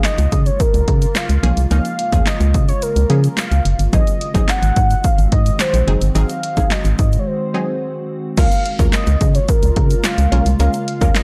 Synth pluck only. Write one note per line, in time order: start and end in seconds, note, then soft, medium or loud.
0.00 0.61 F3 medium
0.00 0.61 A#3 medium
0.00 0.61 C#4 medium
0.00 0.61 G#4 medium
1.43 1.61 F3 medium
1.43 1.61 A#3 medium
1.43 1.61 C#4 medium
1.43 1.61 G#4 medium
1.71 1.97 F3 medium
1.71 1.97 A#3 medium
1.71 1.97 C#4 medium
1.71 1.98 D#4 medium
2.12 2.74 F3 medium
2.12 2.74 A#3 medium
2.12 2.74 C#4 medium
2.12 2.74 G#4 medium
3.10 3.63 F3 medium
3.10 3.63 A#3 medium
3.10 3.63 C#4 medium
3.10 3.63 G#4 medium
3.93 4.19 F#3 medium
3.93 4.19 C4 medium
3.93 4.20 D#4 medium
3.93 4.20 G#4 medium
4.34 5.05 F#3 medium
4.34 5.05 C4 medium
4.34 5.05 D#4 medium
4.34 5.05 G#4 medium
5.87 6.05 F#3 medium
5.87 6.05 C4 medium
5.87 6.05 D#4 medium
5.87 6.05 G#4 medium
6.15 6.42 F#3 medium
6.15 6.42 C4 medium
6.15 6.42 D#4 medium
6.15 6.42 G#4 medium
6.57 7.19 F#3 medium
6.57 7.19 C4 medium
6.57 7.19 D#4 medium
6.57 7.19 G#4 medium
7.54 8.07 F#3 medium
7.54 8.07 C4 medium
7.54 8.07 D#4 medium
7.54 8.07 G#4 medium
8.37 8.64 G#3 medium
8.37 8.64 A#3 medium
8.37 8.64 C#4 medium
8.37 8.64 F4 medium
8.37 8.64 A#4 medium
8.79 9.50 G#3 medium
8.79 9.50 A#3 medium
8.79 9.50 C#4 medium
8.79 9.50 F4 medium
8.79 9.50 A#4 medium
10.32 10.50 G#3 medium
10.32 10.50 A#3 medium
10.32 10.50 C#4 medium
10.32 10.50 F4 medium
10.32 10.50 A#4 medium
10.60 10.86 G#3 medium
10.60 10.86 A#3 medium
10.60 10.86 C#4 medium
10.60 10.86 F4 medium
10.60 10.86 A#4 medium
11.01 11.23 G#3 medium
11.01 11.23 A#3 medium
11.01 11.23 C#4 medium
11.01 11.23 F4 medium
11.01 11.23 A#4 medium